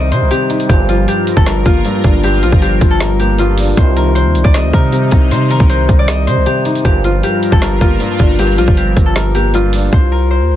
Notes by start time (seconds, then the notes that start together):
Already playing: C2 C3 D#3 G3 C4 D#4 A#4 C5 D#5
0.12 C3 C4 C5, closed hi-hat
0.22 C2
0.31 C3 G4, closed hi-hat
0.50 D#4, closed hi-hat, open hi-hat
0.60 closed hi-hat
0.69 G1 D2 G2 A#2 F3 F4 G4 A#4, kick, closed hi-hat
0.88 F3 F4, closed hi-hat
1.08 G4, closed hi-hat
1.27 closed hi-hat
1.36 G1 A4, kick
1.46 G2 A#4, snare, closed hi-hat
1.66 G1 A#3 F4, kick, closed hi-hat
1.85 G2, closed hi-hat
2.04 G1 D4, kick, closed hi-hat
2.24 G2 G4, closed hi-hat
2.43 A#1 F3 F4, closed hi-hat
2.52 G1, kick
2.62 G4, closed hi-hat
2.81 G1, kick, closed hi-hat
2.91 A4
3.00 G2 A#4, snare, closed hi-hat
3.19 A#3 G4, closed hi-hat
3.39 G2 F4, closed hi-hat
3.58 D4, open hi-hat
3.77 C2 G2 C3 D#3 D#4 C5, kick, closed hi-hat
3.96 D#3 A#4, closed hi-hat
4.15 C5, closed hi-hat
4.25 D#2
4.35 C2, closed hi-hat
4.44 C2 D5, kick
4.54 C3 D#5, snare, closed hi-hat
4.64 D2
4.73 C3 C4 A#4, kick, closed hi-hat
4.92 C3, closed hi-hat
5.11 C2 D#4, kick, closed hi-hat
5.31 C3 C5, closed hi-hat
5.50 D#3 A#4, closed hi-hat
5.60 C2, kick
5.70 C5, closed hi-hat
5.89 C2, kick, closed hi-hat
5.99 D5
6.08 C3 D#5, snare, closed hi-hat
6.27 C3 C4 C5, closed hi-hat
6.37 C2
6.46 C3 G4, closed hi-hat
6.65 D#4, closed hi-hat, open hi-hat
6.75 closed hi-hat
6.85 G1 D2 G2 A#2 F3 G3 F4 G4 A#4, kick, closed hi-hat
7.04 F3 F4, closed hi-hat
7.23 G4, closed hi-hat
7.43 closed hi-hat
7.52 G1 A4, kick
7.61 G2 A#4, snare, closed hi-hat
7.81 G1 A#3 F4, kick, closed hi-hat
8.00 G2, closed hi-hat
8.19 G1 D4, kick, closed hi-hat
8.39 G2 G4, closed hi-hat
8.58 A#1 F3 F4, closed hi-hat
8.68 G1, kick
8.77 G4, closed hi-hat
8.97 G1, kick, closed hi-hat
9.06 A4
9.16 G2 A#4, snare, closed hi-hat
9.35 A#3 G4, closed hi-hat
9.54 G2 F4, closed hi-hat
9.73 D4, open hi-hat
9.93 C2 C5, kick
10.12 A#4
10.31 C5
10.41 D#2
10.50 C2